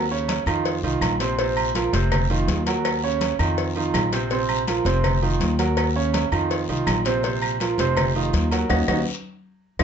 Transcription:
Already playing: upright bass D#2
0.11 grand piano C#3 C#4 C#5, high conga
0.28 cowbell, high conga, low agogo, short guiro
0.46 upright bass F2, grand piano D#3 D#4 F4, low agogo, short guiro, claves
0.65 cowbell, high conga, long guiro
0.83 upright bass C2, grand piano D#3 D#4 F4, high conga, low agogo
1.01 upright bass A#1, cowbell, high conga, low agogo, short guiro, claves
1.20 grand piano C3 C4 C5, cowbell, high conga, low agogo, short guiro
1.39 grand piano C3 C4 C5, cowbell, high conga, long guiro
1.57 high conga, low agogo, claves
1.75 grand piano F3 F4 A#4, cowbell, high conga, low agogo, short guiro
1.93 upright bass F1, grand piano C3 C4 C5, cowbell, high conga, short guiro
2.12 cowbell, high conga, low conga, low agogo, long guiro, claves
2.30 grand piano D#3 D#4 F4, high conga, low agogo
2.48 upright bass D#2, cowbell, high conga, low timbale, short guiro
2.66 grand piano F#3 F#4 A#4, cowbell, low agogo, short guiro
2.85 cowbell, high conga, low agogo, long guiro, claves
3.03 grand piano C#3 C#4 C#5, high conga
3.21 cowbell, high conga, low agogo, short guiro
3.39 upright bass F2, grand piano D#3 D#4 F4, low agogo, short guiro, claves
3.58 cowbell, high conga, long guiro
3.75 grand piano D#3 D#4 F4, high conga, low agogo
3.94 upright bass A#1, cowbell, high conga, low timbale, low agogo, short guiro, claves
4.12 grand piano C3 C4 C5, cowbell, high conga, low agogo, short guiro
4.30 grand piano C3 C4 C5, cowbell, high conga, long guiro
4.49 high conga, low agogo, claves
4.67 grand piano F3 F4 A#4, cowbell, high conga, low agogo, short guiro
4.85 upright bass F1, grand piano C3 C4 C5, cowbell, high conga, short guiro
5.04 cowbell, high conga, low conga, low agogo, long guiro, claves
5.22 grand piano D#3 D#4 F4, high conga, low agogo
5.40 upright bass D#2, cowbell, high conga, short guiro
5.59 grand piano F#3 F#4 A#4, cowbell, low agogo, short guiro
5.77 cowbell, high conga, low agogo, long guiro, claves
5.96 grand piano C#3 C#4 C#5, high conga
6.14 cowbell, high conga, low agogo, short guiro
6.32 upright bass F2, grand piano D#3 D#4 F4, low agogo, short guiro, claves
6.50 cowbell, high conga, long guiro
6.68 upright bass C2, grand piano D#3 D#4 F4, high conga, low agogo
6.87 upright bass A#1, cowbell, high conga, low timbale, low agogo, short guiro, claves
7.05 grand piano C3 C4 C5, cowbell, low agogo, short guiro
7.23 grand piano C3 C4 C5, cowbell, high conga, long guiro
7.42 high conga, low agogo, claves
7.60 grand piano F3 F4 A#4, cowbell, high conga, low agogo, short guiro
7.78 upright bass F1, grand piano C3 C4 C5, cowbell, high conga, short guiro
7.97 cowbell, high conga, low conga, low agogo, long guiro, claves
8.15 grand piano D#3 D#4 F4, high conga, low agogo
8.33 upright bass D#2, cowbell, high conga, short guiro
8.51 grand piano F#3 F#4 A#4, cowbell, low agogo, short guiro
8.69 upright bass D#2, grand piano C#4 D#4 F#4, cowbell, high conga, high timbale, long guiro, claves
8.88 upright bass D#2, grand piano C#4 D#4 F#4, cowbell, high conga, high timbale, long guiro, claves
9.79 upright bass F2, grand piano C4 D#4 F4, cowbell, high conga, high timbale, long guiro, claves

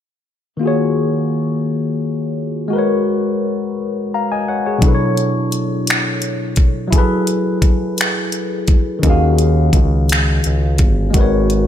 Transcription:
0.57 tine electric piano D#3 A#3 F4
0.63 tine electric piano F#4 G#4
0.67 tine electric piano C#5
2.68 tine electric piano G#3 F#4
2.73 tine electric piano A#4 B4
2.78 tine electric piano C#5
4.14 tine electric piano F5 A#5
4.32 tine electric piano D#5 G#5
4.48 tine electric piano C#5 F#5
4.66 tine electric piano G#4 C#5
4.78 tine electric piano B2 F#3 D4, kick, closed hi-hat
4.84 tine electric piano E4 A4
4.88 tine electric piano B4
4.95 tine electric piano C#5
5.17 closed hi-hat
5.52 closed hi-hat
5.87 finger snap, closed hi-hat
6.22 closed hi-hat
6.56 kick, closed hi-hat
6.88 tine electric piano F#3 E4
6.93 tine electric piano G#4 A4, kick, closed hi-hat
6.98 tine electric piano B4
7.27 closed hi-hat
7.62 kick, closed hi-hat
7.98 finger snap, closed hi-hat
8.32 closed hi-hat
8.68 kick, closed hi-hat
8.99 tine electric piano D#3 C#4
9.03 analog synth bass D#2, tine electric piano F4 G#4, kick, closed hi-hat
9.10 tine electric piano F#4 F5
9.38 closed hi-hat
9.73 analog synth bass C#2, kick, closed hi-hat
10.09 finger snap, closed hi-hat
10.44 analog synth bass C#2, closed hi-hat
10.78 analog synth bass G1, kick, closed hi-hat
11.10 tine electric piano G#3 F#4, kick, closed hi-hat
11.15 analog synth bass G#1, tine electric piano A#4 B4
11.21 tine electric piano C#5
11.50 closed hi-hat

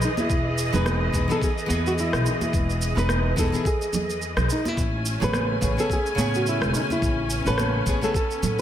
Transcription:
Already playing: string section E3 G#4 D#5
0.02 nylon-string guitar D#4, shaker
0.17 nylon-string guitar E4, high conga, shaker
0.30 upright bass E1, kick, shaker
0.58 shaker
0.73 upright bass E1, nylon-string guitar E3 B3 D#4 G#4 B4, low conga, shaker
0.86 cross-stick, high conga, shaker
1.12 upright bass E1, nylon-string guitar E3 B3 D#4 G#4, kick, shaker
1.28 nylon-string guitar E3 B3 D#4 G#4 A4, shaker
1.42 nylon-string guitar G#4, kick, shaker
1.58 shaker
1.66 upright bass E2, nylon-string guitar E3 B3 D#5, high conga
1.70 nylon-string guitar G#4, shaker
1.86 nylon-string guitar F#4, shaker
1.98 nylon-string guitar E4, shaker
2.13 upright bass B1, cross-stick, shaker
2.26 nylon-string guitar D#4, shaker
2.41 nylon-string guitar E4, high conga, shaker
2.53 upright bass E1, kick, shaker
2.70 shaker
2.82 shaker
2.95 upright bass E1, nylon-string guitar E3 B3 D#4 B4, shaker
3.09 cross-stick, high conga, shaker
3.36 upright bass E1, nylon-string guitar E3 B3 D#4 G#4 A4, kick, shaker
3.52 nylon-string guitar E3 B3 D#4 G#4, shaker
3.65 nylon-string guitar G#4, kick, shaker
3.82 shaker
3.93 upright bass E2, high conga, low conga, shaker
4.10 shaker
4.22 shaker
4.36 upright bass B1, cross-stick, low conga, shaker
4.50 nylon-string guitar D#4, shaker
4.65 nylon-string guitar E4, high conga, shaker
4.77 upright bass A1, string section A3 C#4 G#5, kick, shaker
5.06 shaker
5.20 upright bass A1, nylon-string guitar C#3 A3 B3 G#4, low conga, shaker
5.24 nylon-string guitar B4
5.33 cross-stick, high conga, shaker
5.61 upright bass A1, nylon-string guitar C#3 A3 B3 G#4, kick, shaker
5.77 nylon-string guitar C#3 A3 B3 G#4 A4, shaker
5.90 nylon-string guitar G#4, kick, shaker
6.06 shaker
6.15 upright bass A2, nylon-string guitar C#3 A3 B3, shaker
6.19 nylon-string guitar G#4, high conga
6.34 nylon-string guitar F#4, shaker
6.47 nylon-string guitar E4, shaker
6.61 upright bass E1, cross-stick, shaker
6.72 nylon-string guitar D#4 E4, shaker
6.90 nylon-string guitar E4, high conga, shaker
7.02 upright bass A1, string section B3, kick, shaker
7.30 shaker
7.46 upright bass A1, nylon-string guitar C#3 A3 B3 A4 B4, shaker
7.58 cross-stick, high conga, shaker
7.86 upright bass A1, nylon-string guitar C#3 A3 B3 G#4, kick, shaker
8.01 nylon-string guitar C#3 A3 B3 G#4 A4, shaker
8.14 nylon-string guitar A4, kick, shaker
8.31 shaker
8.43 upright bass A2, high conga, low conga, shaker

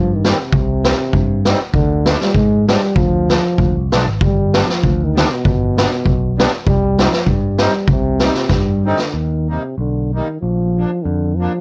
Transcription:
Already playing: picked electric bass G2, euphonium F3
0.15 euphonium D#3
0.25 accordion D#3 G3 C4, snare
0.40 euphonium C3
0.52 picked electric bass C2, kick
0.84 accordion D#3 G3 C4, snare
1.13 picked electric bass G2, kick
1.45 accordion D#3 G3 C4, snare
1.74 picked electric bass D2, euphonium D3, kick
2.06 accordion F3 G#3 D4, snare
2.20 euphonium G3, snare
2.35 picked electric bass G#2, euphonium G#3, kick
2.67 accordion F3 G#3 D4, euphonium G3, snare
2.96 picked electric bass D2, euphonium F3, kick
3.29 accordion F3 G#3 D4, snare
3.58 picked electric bass D2, kick
3.76 picked electric bass C2
3.92 picked electric bass B1, accordion F3 G#3 D4, snare
4.07 picked electric bass G#1
4.21 picked electric bass G1, euphonium G3, kick
4.53 accordion G3 B3 D4, snare
4.64 euphonium F3
4.69 snare
4.83 picked electric bass D2, kick
5.04 euphonium D#3
5.14 accordion G3 B3 D4, snare
5.31 euphonium B2
5.45 picked electric bass G1, kick
5.75 accordion G3 B3 D4, snare
6.05 picked electric bass B1, kick
6.38 accordion G3 B3 D4, snare
6.67 picked electric bass C2, euphonium G3, kick
6.99 accordion G3 C4 D#4, snare
7.07 euphonium F3
7.13 snare
7.26 picked electric bass G2, euphonium G3, kick
7.58 accordion G3 C4 D#4, snare
7.87 picked electric bass C2, euphonium C3, kick
8.20 accordion G3 C4 D#4, snare
8.34 snare
8.48 picked electric bass G2, euphonium G3, kick, snare
8.85 euphonium D3, accordion G3 C4 D#4
8.99 snare
9.14 picked electric bass D#2, euphonium D#3
9.49 euphonium C3, accordion G3 A#3 D#4
9.78 picked electric bass B1, euphonium D3
10.14 euphonium D#3, accordion G3 A#3 D#4
10.41 picked electric bass A#1, euphonium F3
10.76 accordion F3 A#3 D4
11.04 picked electric bass F2, euphonium D3
11.37 euphonium F3, accordion F3 A#3 D4

